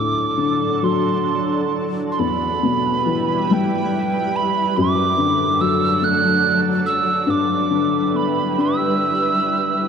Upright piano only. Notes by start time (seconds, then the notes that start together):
Already playing: D2 A2
0.37 D3
0.83 F#3
2.19 E2
2.63 B2
3.06 E3
3.51 G3
4.77 F#2
5.18 D3
5.61 F#3
6.02 A3
7.27 G2
7.70 D3
8.13 B3
8.58 D4